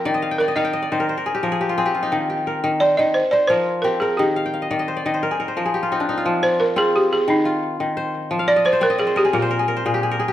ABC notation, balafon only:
X:1
M:12/8
L:1/8
Q:3/8=116
K:Fdor
V:1 name="Balafon"
B2 B e8 z | z4 d e c d c2 B A | G4 z8 | z c B A G A E z4 z |
z d c B A G F z4 z |]